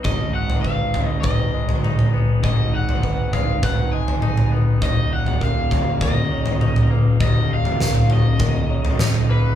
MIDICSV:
0, 0, Header, 1, 6, 480
1, 0, Start_track
1, 0, Key_signature, -6, "minor"
1, 0, Tempo, 596421
1, 43, Time_signature, 4, 2, 24, 8
1, 7687, End_track
2, 0, Start_track
2, 0, Title_t, "Overdriven electric guitar"
2, 0, Program_c, 0, 29
2, 34, Note_on_c, 0, 75, 69
2, 262, Note_off_c, 0, 75, 0
2, 273, Note_on_c, 0, 78, 69
2, 494, Note_off_c, 0, 78, 0
2, 497, Note_on_c, 0, 77, 70
2, 851, Note_off_c, 0, 77, 0
2, 851, Note_on_c, 0, 75, 70
2, 958, Note_off_c, 0, 75, 0
2, 971, Note_on_c, 0, 75, 57
2, 1674, Note_off_c, 0, 75, 0
2, 1968, Note_on_c, 0, 75, 64
2, 2189, Note_off_c, 0, 75, 0
2, 2215, Note_on_c, 0, 78, 65
2, 2681, Note_off_c, 0, 78, 0
2, 2684, Note_on_c, 0, 77, 62
2, 2921, Note_off_c, 0, 77, 0
2, 2924, Note_on_c, 0, 78, 77
2, 3147, Note_off_c, 0, 78, 0
2, 3156, Note_on_c, 0, 80, 73
2, 3607, Note_off_c, 0, 80, 0
2, 3889, Note_on_c, 0, 75, 79
2, 4109, Note_off_c, 0, 75, 0
2, 4129, Note_on_c, 0, 78, 77
2, 4349, Note_off_c, 0, 78, 0
2, 4373, Note_on_c, 0, 77, 75
2, 4845, Note_off_c, 0, 77, 0
2, 4848, Note_on_c, 0, 75, 67
2, 5533, Note_off_c, 0, 75, 0
2, 5814, Note_on_c, 0, 75, 86
2, 6056, Note_off_c, 0, 75, 0
2, 6065, Note_on_c, 0, 77, 88
2, 6541, Note_off_c, 0, 77, 0
2, 6544, Note_on_c, 0, 75, 70
2, 7463, Note_off_c, 0, 75, 0
2, 7488, Note_on_c, 0, 71, 77
2, 7687, Note_off_c, 0, 71, 0
2, 7687, End_track
3, 0, Start_track
3, 0, Title_t, "Felt piano"
3, 0, Program_c, 1, 0
3, 33, Note_on_c, 1, 75, 63
3, 515, Note_on_c, 1, 71, 56
3, 518, Note_off_c, 1, 75, 0
3, 982, Note_off_c, 1, 71, 0
3, 994, Note_on_c, 1, 71, 64
3, 1234, Note_on_c, 1, 75, 60
3, 1238, Note_off_c, 1, 71, 0
3, 1716, Note_on_c, 1, 71, 55
3, 1718, Note_off_c, 1, 75, 0
3, 1958, Note_on_c, 1, 75, 64
3, 1959, Note_off_c, 1, 71, 0
3, 2440, Note_off_c, 1, 75, 0
3, 2442, Note_on_c, 1, 71, 65
3, 2910, Note_off_c, 1, 71, 0
3, 2922, Note_on_c, 1, 71, 69
3, 3162, Note_off_c, 1, 71, 0
3, 3164, Note_on_c, 1, 75, 60
3, 3643, Note_off_c, 1, 75, 0
3, 3647, Note_on_c, 1, 71, 55
3, 3879, Note_on_c, 1, 75, 68
3, 3885, Note_off_c, 1, 71, 0
3, 4351, Note_on_c, 1, 70, 64
3, 4361, Note_off_c, 1, 75, 0
3, 4827, Note_off_c, 1, 70, 0
3, 4839, Note_on_c, 1, 70, 68
3, 5077, Note_on_c, 1, 73, 68
3, 5081, Note_off_c, 1, 70, 0
3, 5556, Note_on_c, 1, 71, 61
3, 5560, Note_off_c, 1, 73, 0
3, 5796, Note_on_c, 1, 75, 69
3, 5799, Note_off_c, 1, 71, 0
3, 6280, Note_off_c, 1, 75, 0
3, 6282, Note_on_c, 1, 70, 67
3, 6745, Note_off_c, 1, 70, 0
3, 6757, Note_on_c, 1, 70, 73
3, 6997, Note_on_c, 1, 73, 64
3, 7001, Note_off_c, 1, 70, 0
3, 7481, Note_off_c, 1, 73, 0
3, 7483, Note_on_c, 1, 71, 65
3, 7687, Note_off_c, 1, 71, 0
3, 7687, End_track
4, 0, Start_track
4, 0, Title_t, "Clean electric guitar"
4, 0, Program_c, 2, 27
4, 0, Note_on_c, 2, 59, 51
4, 0, Note_on_c, 2, 63, 53
4, 33, Note_on_c, 2, 44, 54
4, 281, Note_on_c, 2, 51, 46
4, 501, Note_off_c, 2, 51, 0
4, 511, Note_on_c, 2, 51, 52
4, 757, Note_off_c, 2, 59, 0
4, 761, Note_on_c, 2, 56, 47
4, 983, Note_off_c, 2, 51, 0
4, 993, Note_on_c, 2, 51, 52
4, 1230, Note_off_c, 2, 56, 0
4, 1238, Note_off_c, 2, 44, 0
4, 1239, Note_on_c, 2, 56, 53
4, 1480, Note_off_c, 2, 63, 0
4, 1480, Note_on_c, 2, 63, 51
4, 1719, Note_on_c, 2, 59, 52
4, 1956, Note_on_c, 2, 44, 60
4, 2189, Note_off_c, 2, 51, 0
4, 2199, Note_on_c, 2, 51, 54
4, 2429, Note_off_c, 2, 51, 0
4, 2439, Note_on_c, 2, 51, 54
4, 2441, Note_off_c, 2, 56, 0
4, 2678, Note_on_c, 2, 56, 45
4, 2910, Note_off_c, 2, 51, 0
4, 2920, Note_on_c, 2, 51, 58
4, 2921, Note_off_c, 2, 59, 0
4, 3152, Note_off_c, 2, 56, 0
4, 3159, Note_off_c, 2, 44, 0
4, 3161, Note_on_c, 2, 56, 55
4, 3396, Note_off_c, 2, 63, 0
4, 3400, Note_on_c, 2, 63, 57
4, 3637, Note_on_c, 2, 59, 56
4, 3878, Note_on_c, 2, 39, 61
4, 3880, Note_off_c, 2, 59, 0
4, 3881, Note_off_c, 2, 51, 0
4, 3882, Note_off_c, 2, 56, 0
4, 4121, Note_on_c, 2, 46, 52
4, 4344, Note_off_c, 2, 46, 0
4, 4354, Note_on_c, 2, 46, 57
4, 4599, Note_on_c, 2, 51, 48
4, 4832, Note_off_c, 2, 46, 0
4, 4842, Note_on_c, 2, 46, 58
4, 5070, Note_off_c, 2, 51, 0
4, 5079, Note_on_c, 2, 51, 58
4, 5080, Note_off_c, 2, 39, 0
4, 5317, Note_off_c, 2, 63, 0
4, 5320, Note_on_c, 2, 63, 59
4, 5557, Note_on_c, 2, 58, 61
4, 5798, Note_on_c, 2, 39, 61
4, 6029, Note_off_c, 2, 46, 0
4, 6038, Note_on_c, 2, 46, 58
4, 6273, Note_off_c, 2, 46, 0
4, 6282, Note_off_c, 2, 51, 0
4, 6283, Note_on_c, 2, 46, 55
4, 6522, Note_off_c, 2, 63, 0
4, 6523, Note_on_c, 2, 51, 50
4, 6751, Note_off_c, 2, 46, 0
4, 6761, Note_off_c, 2, 58, 0
4, 6761, Note_on_c, 2, 46, 58
4, 6995, Note_off_c, 2, 51, 0
4, 7002, Note_off_c, 2, 39, 0
4, 7005, Note_on_c, 2, 51, 62
4, 7242, Note_on_c, 2, 63, 56
4, 7482, Note_on_c, 2, 58, 61
4, 7687, Note_off_c, 2, 46, 0
4, 7687, Note_off_c, 2, 51, 0
4, 7687, Note_off_c, 2, 58, 0
4, 7687, Note_off_c, 2, 63, 0
4, 7687, End_track
5, 0, Start_track
5, 0, Title_t, "Fingered electric bass"
5, 0, Program_c, 3, 33
5, 38, Note_on_c, 3, 32, 60
5, 1928, Note_off_c, 3, 32, 0
5, 1960, Note_on_c, 3, 32, 62
5, 3849, Note_off_c, 3, 32, 0
5, 3878, Note_on_c, 3, 27, 71
5, 5769, Note_off_c, 3, 27, 0
5, 5796, Note_on_c, 3, 27, 70
5, 7687, Note_off_c, 3, 27, 0
5, 7687, End_track
6, 0, Start_track
6, 0, Title_t, "Drums"
6, 35, Note_on_c, 9, 43, 62
6, 39, Note_on_c, 9, 36, 80
6, 115, Note_off_c, 9, 43, 0
6, 120, Note_off_c, 9, 36, 0
6, 400, Note_on_c, 9, 43, 59
6, 480, Note_off_c, 9, 43, 0
6, 519, Note_on_c, 9, 36, 51
6, 599, Note_off_c, 9, 36, 0
6, 757, Note_on_c, 9, 43, 64
6, 759, Note_on_c, 9, 36, 51
6, 837, Note_off_c, 9, 43, 0
6, 839, Note_off_c, 9, 36, 0
6, 994, Note_on_c, 9, 43, 66
6, 998, Note_on_c, 9, 36, 87
6, 1074, Note_off_c, 9, 43, 0
6, 1079, Note_off_c, 9, 36, 0
6, 1358, Note_on_c, 9, 43, 61
6, 1439, Note_off_c, 9, 43, 0
6, 1485, Note_on_c, 9, 47, 57
6, 1565, Note_off_c, 9, 47, 0
6, 1600, Note_on_c, 9, 43, 60
6, 1681, Note_off_c, 9, 43, 0
6, 1961, Note_on_c, 9, 36, 75
6, 1961, Note_on_c, 9, 43, 61
6, 2041, Note_off_c, 9, 36, 0
6, 2042, Note_off_c, 9, 43, 0
6, 2324, Note_on_c, 9, 43, 61
6, 2405, Note_off_c, 9, 43, 0
6, 2442, Note_on_c, 9, 36, 54
6, 2523, Note_off_c, 9, 36, 0
6, 2681, Note_on_c, 9, 36, 55
6, 2683, Note_on_c, 9, 43, 66
6, 2762, Note_off_c, 9, 36, 0
6, 2763, Note_off_c, 9, 43, 0
6, 2922, Note_on_c, 9, 36, 95
6, 2922, Note_on_c, 9, 43, 65
6, 3002, Note_off_c, 9, 36, 0
6, 3002, Note_off_c, 9, 43, 0
6, 3284, Note_on_c, 9, 43, 63
6, 3365, Note_off_c, 9, 43, 0
6, 3397, Note_on_c, 9, 47, 60
6, 3478, Note_off_c, 9, 47, 0
6, 3521, Note_on_c, 9, 43, 65
6, 3601, Note_off_c, 9, 43, 0
6, 3878, Note_on_c, 9, 36, 86
6, 3879, Note_on_c, 9, 43, 67
6, 3959, Note_off_c, 9, 36, 0
6, 3960, Note_off_c, 9, 43, 0
6, 4237, Note_on_c, 9, 43, 58
6, 4317, Note_off_c, 9, 43, 0
6, 4357, Note_on_c, 9, 36, 53
6, 4437, Note_off_c, 9, 36, 0
6, 4598, Note_on_c, 9, 36, 58
6, 4603, Note_on_c, 9, 43, 66
6, 4678, Note_off_c, 9, 36, 0
6, 4683, Note_off_c, 9, 43, 0
6, 4837, Note_on_c, 9, 43, 71
6, 4838, Note_on_c, 9, 36, 88
6, 4917, Note_off_c, 9, 43, 0
6, 4918, Note_off_c, 9, 36, 0
6, 5196, Note_on_c, 9, 43, 67
6, 5276, Note_off_c, 9, 43, 0
6, 5321, Note_on_c, 9, 47, 64
6, 5402, Note_off_c, 9, 47, 0
6, 5443, Note_on_c, 9, 43, 66
6, 5523, Note_off_c, 9, 43, 0
6, 5798, Note_on_c, 9, 43, 66
6, 5799, Note_on_c, 9, 36, 87
6, 5878, Note_off_c, 9, 43, 0
6, 5879, Note_off_c, 9, 36, 0
6, 6159, Note_on_c, 9, 43, 63
6, 6239, Note_off_c, 9, 43, 0
6, 6281, Note_on_c, 9, 38, 65
6, 6281, Note_on_c, 9, 47, 59
6, 6362, Note_off_c, 9, 38, 0
6, 6362, Note_off_c, 9, 47, 0
6, 6394, Note_on_c, 9, 43, 64
6, 6474, Note_off_c, 9, 43, 0
6, 6517, Note_on_c, 9, 43, 72
6, 6597, Note_off_c, 9, 43, 0
6, 6756, Note_on_c, 9, 43, 76
6, 6759, Note_on_c, 9, 36, 93
6, 6837, Note_off_c, 9, 43, 0
6, 6840, Note_off_c, 9, 36, 0
6, 7119, Note_on_c, 9, 43, 68
6, 7200, Note_off_c, 9, 43, 0
6, 7238, Note_on_c, 9, 38, 70
6, 7238, Note_on_c, 9, 43, 67
6, 7238, Note_on_c, 9, 47, 65
6, 7319, Note_off_c, 9, 38, 0
6, 7319, Note_off_c, 9, 43, 0
6, 7319, Note_off_c, 9, 47, 0
6, 7357, Note_on_c, 9, 43, 67
6, 7357, Note_on_c, 9, 47, 67
6, 7438, Note_off_c, 9, 43, 0
6, 7438, Note_off_c, 9, 47, 0
6, 7687, End_track
0, 0, End_of_file